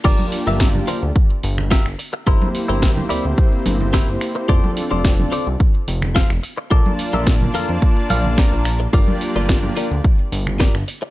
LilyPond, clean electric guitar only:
\new Staff \with { instrumentName = "Clean electric guitar" } { \time 4/4 \key g \dorian \tempo 4 = 108 << { r1 | r1 | r1 | r2 r8 f''8 bes''4 |
r1 | } \\ { <f' g' bes' d''>8 r16 <f' g' bes' e''>16 r8 <f' g' bes' c''>16 r4 r16 <f' g' bes' e''>16 r8. | <e' g' bes' c''>8 r16 <e' g' bes' c''>16 r8 <e' g' bes' d''>16 r4 r16 <e' g' bes' c''>16 r8. | <f' a' c'' d''>8 r16 <f' a' c'' d''>16 r8 <f' a' c'' d''>16 r4 r16 <f' a' c'' f''>16 r8. | <f' a' bes' d''>8 r16 <f' a' bes' e''>16 r8 <f' a' bes' f''>16 r4 r16 <f' a' bes' d''>16 r8. |
<f' g' bes' d''>8 r16 <f' g' bes' d''>16 r8 <f' g' bes' d''>16 r4 r16 <f' g' bes' d''>16 r8. | } >> }